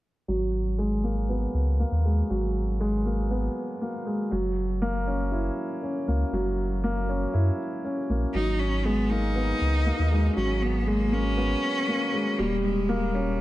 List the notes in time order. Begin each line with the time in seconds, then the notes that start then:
0.28 G#1 F#3
0.78 G#3
1.04 A#3
1.29 B3
1.54 C#2
1.80 A#3
1.92 D#2
2.05 G#3
2.30 G#1 F#3
2.80 G#3
3.06 A#3
3.31 B3
3.81 A#3
4.06 G#3
4.31 F#1 F#3
4.82 A#3
5.07 C#4
5.32 E4
5.83 C#4
6.08 C#2 A#3
6.33 F#1 F#3
6.84 A#3
7.09 C#4
7.34 F#2 E4
7.84 C#4
8.10 A#1 A#3
8.34 G#1 F#3 D#4
8.59 C#4
8.85 G#3 B3
9.09 A#3 D#4
9.36 B3
9.61 C#2
9.86 A#3
9.99 D#2
10.11 G#3
10.36 G#1 F#3 C#4
10.63 B3
10.87 G#3 A#3
11.12 A#3 C#4
11.38 B3
11.88 A#3
12.13 G#3
12.38 D#1 G3 A#3
12.64 G#3
12.89 A#3
13.15 G3 C#4